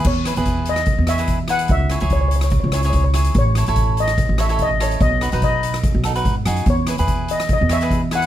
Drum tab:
CC |x---------------|----------------|----------------|----------------|
HH |--xxx-xxx-xxx-xx|x-xxx-xxx-xxx-xx|x-xxx-xxx-xxx-xx|x-xxx-xxx-xxx-xx|
SD |--r----r--r---r-|--r----r--r---r-|--r----r--r---r-|--r----r--r---r-|
BD |o---o---o---o---|o---o---o---o---|o---o---o---o---|o---o---o---o---|

CC |----------------|
HH |x-xxx-xxx-xxx-xx|
SD |--r----r--r---r-|
BD |o---o---o---o---|